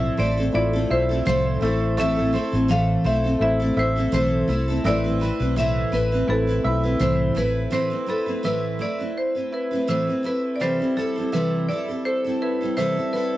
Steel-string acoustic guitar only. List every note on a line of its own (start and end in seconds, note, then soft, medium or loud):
0.00 0.18 A2 medium
0.00 0.18 F3 medium
0.00 0.16 A3 medium
0.00 0.17 C4 medium
0.00 0.18 E4 medium
0.00 0.19 A4 medium
0.17 0.38 A3 medium
0.17 0.38 C4 medium
0.17 0.37 E4 medium
0.17 0.36 A4 medium
0.37 0.75 A3 soft
0.37 0.74 C4 soft
0.37 0.73 E4 soft
0.37 0.72 A4 medium
0.73 1.11 A3 soft
0.73 1.10 C4 soft
0.73 1.09 E4 soft
0.73 1.08 A4 medium
1.09 1.25 A3 soft
1.09 1.25 C4 soft
1.09 1.26 E4 soft
1.09 1.25 A4 medium
1.25 1.61 A2 medium
1.25 1.62 F3 medium
1.25 1.59 A3 medium
1.25 1.61 C4 medium
1.25 1.62 E4 medium
1.25 1.62 A4 medium
1.61 1.97 A3 medium
1.61 1.97 C4 medium
1.61 1.98 E4 medium
1.61 1.98 A4 medium
1.97 2.17 A2 medium
1.97 2.18 E3 medium
1.97 2.18 A3 medium
1.97 2.17 C4 medium
1.97 2.16 E4 medium
1.97 2.15 A4 medium
2.16 2.31 A3 soft
2.16 2.33 C4 soft
2.16 2.34 E4 soft
2.16 2.33 A4 medium
2.32 2.53 A3 medium
2.32 2.53 C4 medium
2.32 2.52 E4 medium
2.32 2.50 A4 medium
2.52 2.68 A3 soft
2.52 2.69 C4 soft
2.52 2.69 E4 medium
2.52 2.69 A4 medium
2.68 3.05 A2 medium
2.68 3.05 E3 medium
2.68 3.03 A3 medium
2.68 3.04 C4 medium
2.68 3.06 A4 medium
3.04 3.25 A3 medium
3.04 3.25 C4 medium
3.04 3.24 E4 medium
3.04 3.23 A4 medium
3.24 3.61 A3 soft
3.24 3.61 C4 soft
3.24 3.59 E4 soft
3.24 3.59 A4 medium
3.60 3.98 A3 soft
3.60 3.97 C4 soft
3.60 3.96 E4 soft
3.60 3.95 A4 medium
3.96 4.11 A3 soft
3.96 4.12 C4 medium
3.96 4.12 E4 medium
3.96 4.13 A4 medium
4.12 4.48 A2 medium
4.12 4.48 E3 medium
4.12 4.46 A3 medium
4.12 4.48 C4 medium
4.12 4.49 E4 medium
4.12 4.49 A4 medium
4.48 4.68 A3 medium
4.48 4.69 C4 medium
4.48 4.68 E4 medium
4.48 4.67 A4 medium
4.68 4.84 A3 soft
4.68 4.85 C4 soft
4.68 4.85 E4 soft
4.68 4.84 A4 medium
4.84 5.04 A2 medium
4.84 5.05 E3 medium
4.84 5.05 A3 medium
4.84 5.05 C4 medium
4.84 5.04 E4 medium
4.84 5.03 B4 medium
5.04 5.19 A3 soft
5.04 5.20 C4 soft
5.04 5.21 E4 medium
5.04 5.20 B4 medium
5.20 5.40 A3 medium
5.20 5.41 C4 medium
5.20 5.40 E4 medium
5.20 5.38 B4 medium
5.40 5.56 A3 soft
5.40 5.56 C4 soft
5.40 5.57 E4 soft
5.40 5.56 B4 medium
5.56 5.92 A2 medium
5.56 5.93 E3 medium
5.56 5.91 A3 medium
5.56 5.92 C4 medium
5.56 5.92 E4 medium
5.56 5.93 B4 medium
5.92 6.12 A3 medium
5.92 6.12 C4 medium
5.92 6.12 E4 medium
5.92 6.11 B4 medium
6.12 6.49 A3 soft
6.12 6.48 C4 soft
6.12 6.47 E4 soft
6.12 6.46 B4 medium
6.47 6.85 A3 soft
6.47 6.84 C4 soft
6.47 6.83 E4 soft
6.47 6.82 B4 soft
6.83 6.99 A3 soft
6.83 7.00 C4 soft
6.83 7.00 E4 soft
6.83 7.00 B4 medium
6.99 7.36 A2 medium
6.99 7.36 E3 medium
6.99 7.33 A3 medium
6.99 7.35 C4 medium
6.99 7.36 E4 medium
7.35 7.70 A3 medium
7.35 7.71 C4 medium
7.35 7.71 E4 medium
7.35 7.72 B4 medium
7.70 7.91 A2 medium
7.70 7.91 E3 medium
7.70 7.92 A3 medium
7.70 7.91 C4 medium
7.70 7.90 E4 medium
7.70 7.89 B4 medium
7.90 8.05 A3 soft
7.90 8.06 C4 soft
7.90 8.07 E4 soft
7.90 8.07 B4 soft
8.06 8.27 A3 soft
8.06 8.27 C4 medium
8.06 8.26 E4 medium
8.06 8.25 B4 medium
8.26 8.43 A3 soft
8.26 8.43 C4 soft
8.26 8.43 E4 soft
8.26 8.43 B4 soft
8.43 8.80 A2 medium
8.43 8.80 E3 medium
8.43 8.78 A3 medium
8.43 8.79 C4 medium
8.43 8.80 E4 medium
8.43 8.81 B4 medium
8.79 8.99 A3 soft
8.79 8.99 C4 medium
8.79 8.99 E4 medium
8.79 8.97 B4 medium
8.99 9.37 A3 soft
8.99 9.36 C4 soft
8.99 9.35 E4 soft
8.99 9.34 B4 soft
9.35 9.73 A3 soft
9.35 9.72 C4 soft
9.35 9.71 E4 soft
9.35 9.70 B4 soft
9.71 9.87 A3 soft
9.71 9.88 C4 soft
9.71 9.88 E4 soft
9.71 9.88 B4 soft
9.87 10.08 A2 medium
9.87 10.08 E3 medium
9.87 10.08 A3 medium
9.87 10.08 C4 medium
9.87 10.07 E4 medium
9.87 10.06 B4 medium
10.07 10.22 A3 soft
10.07 10.23 C4 soft
10.07 10.24 E4 soft
10.07 10.24 B4 soft
10.23 10.60 A3 soft
10.23 10.60 C4 medium
10.23 10.60 E4 medium
10.23 10.61 B4 medium
10.60 10.80 C3 medium
10.60 10.80 E3 medium
10.60 10.80 G3 medium
10.60 10.81 C4 medium
10.60 10.79 E4 medium
10.60 10.78 A4 medium
10.79 10.95 G3 soft
10.79 10.96 C4 soft
10.79 10.97 E4 soft
10.79 10.96 A4 soft
10.96 11.16 G3 soft
10.96 11.17 C4 medium
10.96 11.16 E4 medium
10.96 11.15 A4 medium
11.16 11.32 G3 soft
11.16 11.32 C4 soft
11.16 11.33 E4 soft
11.16 11.32 A4 medium
11.32 11.69 C3 medium
11.32 11.69 E3 medium
11.32 11.67 G3 medium
11.32 11.68 C4 medium
11.32 11.69 E4 medium
11.32 11.70 A4 medium
11.69 11.89 G3 soft
11.69 11.89 C4 soft
11.69 11.88 E4 medium
11.69 11.87 A4 medium
11.88 12.26 G3 soft
11.88 12.26 C4 soft
11.88 12.25 E4 soft
11.88 12.23 A4 soft
12.24 12.62 G3 soft
12.24 12.62 C4 soft
12.24 12.61 E4 soft
12.24 12.59 A4 soft
12.61 12.76 G3 soft
12.61 12.77 C4 soft
12.61 12.77 E4 soft
12.61 12.77 A4 soft
12.76 12.97 C3 medium
12.76 12.97 E3 medium
12.76 12.97 G3 medium
12.76 12.97 C4 medium
12.76 12.96 E4 medium
12.76 12.95 A4 medium
12.96 13.12 G3 soft
12.96 13.13 C4 soft
12.96 13.13 E4 soft
12.96 13.13 A4 soft
13.13 13.37 G3 medium
13.13 13.37 C4 medium
13.13 13.37 E4 medium
13.13 13.37 A4 medium